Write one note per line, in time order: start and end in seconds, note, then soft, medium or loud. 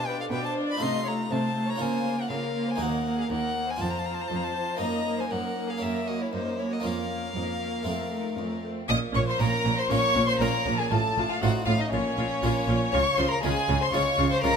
0.00 0.22 B2 soft
0.00 0.23 B2 medium
0.00 0.76 D4 soft
0.00 0.77 F4 soft
0.00 0.78 G4 soft
0.06 0.31 D4 soft
0.06 0.31 F4 soft
0.06 0.19 B4 medium
0.06 0.19 G5 medium
0.20 0.32 A4 medium
0.20 0.25 F5 medium
0.31 0.73 B2 medium
0.31 0.73 B2 soft
0.31 0.56 D4 medium
0.31 0.55 F4 soft
0.31 0.44 B4 medium
0.31 0.43 G5 medium
0.45 0.69 C5 medium
0.45 0.53 A5 medium
0.56 0.81 D4 soft
0.56 0.81 F4 medium
0.68 0.80 D5 medium
0.68 0.84 B5 medium
0.77 1.76 D#4 soft
0.77 1.76 F4 medium
0.77 1.77 A4 medium
0.77 1.05 D#5 medium
0.81 1.22 C3 soft
0.81 1.23 C3 medium
0.81 1.05 A3 medium
0.81 1.06 F4 medium
0.81 1.10 C6 medium
1.05 1.29 A3 soft
1.05 1.31 F4 medium
1.05 1.13 C#5 medium
1.05 1.34 A#5 medium
1.30 1.73 C3 medium
1.30 1.72 C3 soft
1.30 1.54 A3 medium
1.30 1.56 F4 medium
1.30 1.68 C5 medium
1.30 1.71 A5 medium
1.55 1.80 A3 soft
1.55 1.81 F4 soft
1.69 1.81 C#5 medium
1.69 1.83 A#5 medium
1.76 2.75 C#4 soft
1.76 2.76 F4 soft
1.76 2.77 A#4 soft
1.80 2.22 C#3 medium
1.80 2.22 C#3 soft
1.80 2.04 A#3 medium
1.80 2.05 F4 medium
1.80 2.19 C5 medium
1.80 2.23 G#5 medium
2.05 2.29 A#3 soft
2.05 2.30 F4 soft
2.18 2.30 A#4 medium
2.18 2.30 F#5 medium
2.30 2.72 C#3 medium
2.30 2.71 C#3 soft
2.30 2.54 A#3 medium
2.30 2.55 F4 medium
2.30 2.68 A#4 medium
2.30 2.72 F5 medium
2.55 2.78 A#3 medium
2.55 2.80 F4 medium
2.68 2.81 C5 medium
2.68 2.84 G#5 medium
2.76 3.75 A#3 soft
2.76 3.03 A#3 medium
2.76 3.76 D#4 soft
2.76 3.77 F#4 soft
2.80 3.22 D#2 medium
2.80 3.21 D#2 medium
2.80 3.06 D#4 medium
2.80 3.18 A#4 medium
2.80 3.23 F#5 medium
3.04 3.28 A#3 soft
3.04 3.30 D#4 soft
3.18 3.30 G#4 medium
3.18 3.31 F5 medium
3.29 3.72 D#2 soft
3.29 3.73 D#2 medium
3.29 3.54 A#3 soft
3.29 3.56 D#4 soft
3.29 3.67 A#4 medium
3.29 3.72 F#5 medium
3.55 3.80 A#3 soft
3.55 3.81 D#4 soft
3.67 3.72 C5 medium
3.67 3.83 G#5 medium
3.76 4.76 C4 soft
3.76 4.77 F4 soft
3.76 4.78 C5 medium
3.80 4.23 F2 medium
3.80 4.22 F2 soft
3.80 4.04 F3 medium
3.80 4.05 C4 medium
3.80 3.92 A5 medium
3.90 4.00 A#5 medium
3.99 4.07 A5 medium
4.05 4.30 F3 medium
4.05 4.30 C4 soft
4.05 4.16 A#5 medium
4.14 4.23 A5 medium
4.21 4.30 A#5 medium
4.28 4.72 F2 medium
4.28 4.73 F2 medium
4.28 4.55 F3 medium
4.28 4.56 C4 soft
4.28 4.38 A5 medium
4.36 4.45 A#5 medium
4.44 4.81 A5 medium
4.56 4.81 F3 soft
4.56 4.81 C4 medium
4.77 5.76 A#3 medium
4.77 5.78 D#4 soft
4.77 5.18 D#5 medium
4.81 5.22 F#2 medium
4.81 5.24 F#2 medium
4.81 5.05 A#3 medium
4.81 5.06 D#4 soft
4.81 5.22 A#5 medium
5.06 5.31 A#3 soft
5.06 5.31 D#4 soft
5.18 5.31 C5 medium
5.18 5.33 G#5 medium
5.30 5.73 F#2 soft
5.30 5.74 F#2 medium
5.30 5.55 A#3 soft
5.30 5.57 D#4 soft
5.30 5.68 A#4 medium
5.30 5.71 F#5 medium
5.56 5.80 A#3 soft
5.56 5.82 D#4 soft
5.68 5.82 G#4 soft
5.68 5.84 F5 medium
5.77 6.79 A#3 soft
5.77 6.05 A#3 soft
5.77 6.79 C#4 soft
5.82 6.24 F#2 soft
5.82 6.25 F#2 medium
5.82 6.06 C#4 soft
5.82 6.07 A#4 medium
5.82 6.09 E5 medium
6.07 6.30 A#3 soft
6.07 6.33 C#4 soft
6.07 6.20 F#4 medium
6.07 6.23 D#5 medium
6.20 6.33 E4 soft
6.20 6.33 C#5 medium
6.31 6.75 F#2 soft
6.31 6.76 F#2 medium
6.31 6.57 A#3 soft
6.31 6.58 C#4 soft
6.31 6.58 D#4 medium
6.31 6.61 C5 medium
6.57 6.82 A#3 soft
6.57 6.84 C#4 soft
6.57 6.70 E4 soft
6.57 6.74 C#5 medium
6.70 6.84 F#4 medium
6.70 6.88 D#5 medium
6.80 7.82 A#3 soft
6.80 7.08 A#3 soft
6.80 7.83 C#4 soft
6.80 7.83 F4 soft
6.84 7.27 F2 soft
6.84 7.28 F2 medium
6.84 7.10 C#4 soft
6.84 8.60 A#4 medium
6.84 8.65 F5 medium
7.09 7.35 A#3 soft
7.09 7.36 C#4 soft
7.35 7.79 F2 medium
7.35 7.78 F2 soft
7.35 7.60 A#3 soft
7.35 7.44 D#4 medium
7.61 7.86 A#3 soft
7.61 7.87 C#4 medium
7.83 8.30 F2 medium
7.83 8.84 A3 soft
7.83 8.11 A3 soft
7.83 8.85 C4 soft
7.83 8.12 C4 medium
7.83 8.86 F4 soft
7.88 8.29 F2 soft
8.12 8.36 A3 soft
8.12 8.38 D#4 medium
8.37 8.81 F2 medium
8.37 8.80 F2 soft
8.37 8.61 A3 soft
8.37 8.64 C#4 soft
8.63 8.88 A3 soft
8.63 8.89 C4 medium
8.89 8.97 A#1 medium
8.89 9.12 A#2 medium
8.89 8.97 A#2 medium
8.89 8.97 C#4 medium
8.89 8.98 D#5 medium
8.89 8.97 D#6 loud
8.89 8.98 D#6 loud
9.14 9.22 A#1 medium
9.14 9.37 A#2 medium
9.14 9.23 A#2 medium
9.14 9.22 C#4 medium
9.14 9.28 C#5 medium
9.14 9.19 C#6 medium
9.14 9.20 C#6 medium
9.27 9.42 C5 medium
9.27 9.39 C6 medium
9.27 9.34 C6 medium
9.38 9.48 A#1 medium
9.38 9.62 A#2 medium
9.38 9.48 A#2 medium
9.38 9.76 A#3 soft
9.38 9.48 C#4 medium
9.38 9.76 C#4 soft
9.38 9.77 F4 soft
9.38 9.80 A#4 medium
9.38 9.77 A#5 medium
9.38 9.77 A#5 loud
9.64 9.74 A#1 medium
9.64 9.74 A#2 medium
9.64 9.88 A#2 medium
9.64 9.72 C#4 medium
9.77 9.93 C5 medium
9.77 9.90 C6 medium
9.77 9.91 C6 loud
9.89 9.98 A#1 medium
9.89 9.99 A#2 medium
9.89 10.13 A#2 medium
9.89 10.27 A#3 medium
9.89 9.98 C#4 medium
9.89 10.27 C#4 soft
9.89 10.27 F4 medium
9.89 10.27 C#5 loud
9.89 10.28 C#6 medium
9.89 10.28 C#6 loud
10.15 10.23 A#1 medium
10.15 10.24 A#2 medium
10.15 10.38 A#2 medium
10.15 10.23 C#4 medium
10.26 10.42 C5 medium
10.26 10.39 C6 medium
10.26 10.41 C6 loud
10.39 10.49 A#1 medium
10.39 10.49 A#2 medium
10.39 10.64 A#2 medium
10.39 10.77 A#3 medium
10.39 10.48 C#4 medium
10.39 10.78 C#4 medium
10.39 10.78 F4 medium
10.39 10.80 A#4 medium
10.39 10.77 A#5 medium
10.39 10.78 A#5 medium
10.65 10.74 A#1 medium
10.65 10.74 A#2 medium
10.65 10.89 A#2 medium
10.65 10.73 C#4 medium
10.78 10.91 G#4 medium
10.78 10.91 G#5 medium
10.78 10.92 G#5 medium
10.90 10.99 A1 medium
10.90 10.99 A2 medium
10.90 11.14 A2 medium
10.90 10.99 F4 medium
10.90 11.31 A4 medium
10.90 11.28 A5 medium
10.90 11.29 A5 medium
11.16 11.25 A1 medium
11.16 11.24 A2 medium
11.16 11.40 A2 medium
11.16 11.25 F4 medium
11.29 11.41 F4 medium
11.29 11.42 F5 medium
11.41 11.50 A1 medium
11.41 11.50 A2 medium
11.41 11.65 A2 medium
11.41 11.79 C4 soft
11.41 11.79 D#4 medium
11.41 11.49 F4 medium
11.41 11.79 F4 soft
11.41 11.66 F#4 medium
11.41 11.50 F#5 loud
11.41 11.50 F#5 medium
11.66 11.76 A1 medium
11.66 11.75 A2 medium
11.66 11.90 A2 medium
11.66 11.74 F4 medium
11.66 11.78 F4 medium
11.66 11.71 F5 medium
11.66 11.80 F5 loud
11.79 11.90 D#4 medium
11.79 11.92 D#5 medium
11.79 11.93 D#5 medium
11.91 12.01 A#1 medium
11.91 12.00 A#2 medium
11.91 12.15 A#2 medium
11.91 12.94 C#4 medium
11.91 12.00 F4 medium
11.91 12.91 C#5 medium
11.91 12.91 C#5 loud
12.17 12.26 A#1 medium
12.17 12.25 A#2 medium
12.17 12.40 A#2 medium
12.17 12.25 F4 medium
12.42 12.51 A#1 medium
12.42 12.50 A#2 medium
12.42 12.66 A#2 medium
12.42 12.79 A#3 medium
12.42 12.79 C#4 medium
12.42 12.51 F4 medium
12.42 12.80 F4 medium
12.67 12.76 A#1 medium
12.67 12.75 A#2 medium
12.67 12.90 A#2 medium
12.67 12.76 F4 medium
12.92 13.01 C#2 medium
12.92 13.15 C#3 medium
12.92 13.01 C#3 medium
12.92 13.01 F4 medium
12.92 13.19 C#5 medium
12.92 13.18 C#6 loud
13.18 13.26 C#2 medium
13.18 13.40 C#3 medium
13.18 13.27 C#3 medium
13.18 13.26 F4 medium
13.18 13.30 C5 medium
13.18 13.30 C6 medium
13.18 13.30 C6 loud
13.30 13.43 A#4 medium
13.30 13.43 A#5 medium
13.30 13.44 A#5 medium
13.43 13.52 C#2 medium
13.43 13.66 C#3 medium
13.43 13.52 C#3 medium
13.43 13.79 G#3 medium
13.43 13.79 C#4 soft
13.43 13.52 F4 medium
13.43 13.80 F4 soft
13.43 13.83 G#4 medium
13.43 13.80 G#5 loud
13.43 13.81 G#5 medium
13.68 13.77 C#2 medium
13.68 13.91 C#3 medium
13.68 13.77 C#3 medium
13.68 13.76 F4 medium
13.81 13.93 C5 medium
13.81 13.93 C6 medium
13.81 13.94 C6 loud
13.93 14.01 C#2 medium
13.93 14.16 C#3 medium
13.93 14.02 C#3 medium
13.93 14.30 G#3 medium
13.93 14.30 C#4 medium
13.93 14.01 F4 medium
13.93 14.30 F4 medium
13.93 14.31 C#5 medium
13.93 14.30 C#6 medium
13.93 14.31 C#6 loud
14.18 14.27 C#2 medium
14.18 14.41 C#3 medium
14.18 14.27 C#3 medium
14.18 14.26 F4 medium
14.30 14.43 C5 medium
14.30 14.43 C6 medium
14.30 14.44 C6 medium
14.41 14.52 C#2 medium
14.41 14.57 C#3 medium
14.41 14.52 C#3 medium
14.41 14.57 G#3 medium
14.41 14.57 C#4 medium
14.41 14.51 F4 medium
14.41 14.57 F4 medium
14.41 14.57 A#4 loud
14.41 14.57 A#5 medium
14.41 14.57 A#5 loud